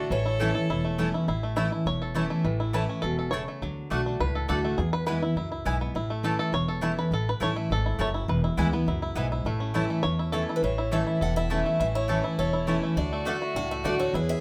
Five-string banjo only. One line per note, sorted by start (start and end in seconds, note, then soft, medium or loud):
0.00 0.40 A3 medium
0.00 0.11 D4 medium
0.00 0.11 F#4 medium
0.00 0.54 A4 medium
0.11 0.52 E3 medium
0.26 0.67 E4 medium
0.40 0.81 A3 medium
0.55 0.96 A4 medium
0.70 1.11 E4 medium
0.85 1.25 A3 medium
0.99 1.28 C#4 medium
1.14 1.27 E4 medium
1.28 1.55 E4 medium
1.43 2.30 A3 medium
1.57 1.71 E4 medium
1.72 2.13 E4 medium
1.87 2.28 C#5 loud
2.02 2.77 A4 medium
2.16 2.57 E4 medium
2.30 2.77 A3 medium
2.45 2.86 E3 medium
2.60 3.01 E4 medium
2.74 2.89 B4 medium
2.89 3.30 C#4 medium
3.02 3.17 A4 loud
3.19 3.59 A4 medium
3.31 3.72 C#5 loud
3.48 3.62 A3 medium
3.62 4.03 F#3 medium
3.91 4.32 A3 medium
4.06 4.47 D4 medium
4.20 4.47 B4 loud
4.35 4.48 A4 medium
4.49 4.79 A4 loud
4.64 4.79 A3 medium
4.78 4.92 G#4 loud
4.93 5.05 B4 loud
5.07 5.34 B4 medium
5.23 5.37 E4 medium
5.37 5.51 E4 medium
5.52 5.66 E4 medium
5.67 5.95 E4 medium
5.81 5.95 B3 medium
5.96 6.82 E4 medium
6.10 6.51 A3 medium
6.24 6.38 A4 medium
6.39 6.53 A4 loud
6.54 6.95 C#5 loud
6.68 7.09 A4 medium
6.83 7.85 E4 medium
6.99 7.12 B4 medium
7.13 7.28 A4 loud
7.29 7.42 B4 medium
7.43 7.56 C#5 loud
7.56 7.97 A3 medium
7.72 8.01 A4 loud
7.86 8.14 E4 medium
8.01 8.29 C#5 medium
8.14 8.44 E4 medium
8.29 8.44 B4 medium
8.44 8.59 E4 medium
8.59 8.88 E4 medium
8.73 9.14 B3 medium
8.88 9.02 E4 medium
9.02 9.32 E4 medium
9.17 9.46 B3 medium
9.32 9.75 E4 medium
9.46 9.87 A3 medium
9.60 10.01 C#4 medium
9.76 10.16 E4 medium
9.90 10.31 A3 medium
10.03 10.34 C#5 loud
10.19 10.48 E4 medium
10.32 10.60 A4 medium
10.49 10.63 E4 medium
10.64 11.04 E3 medium
10.78 11.06 E4 medium
10.93 11.21 A4 medium
11.07 11.36 E4 medium
11.21 12.09 A4 medium
11.37 11.77 E4 medium
11.51 11.92 C#4 medium
11.66 12.83 A3 medium
11.80 12.21 E3 medium
11.95 12.23 E4 medium
12.09 12.37 A4 medium
12.24 12.52 E4 medium
12.39 12.80 A4 medium
12.53 12.94 E4 medium
12.69 12.97 C#4 medium
12.83 12.97 A3 medium
12.98 13.39 D4 medium
13.13 13.53 A3 medium
13.27 13.68 A4 medium
13.42 13.82 F#4 medium
13.56 13.97 D4 medium
13.71 13.99 A3 medium
13.85 14.14 F#4 medium
14.00 14.14 A3 medium
14.14 14.41 E4 medium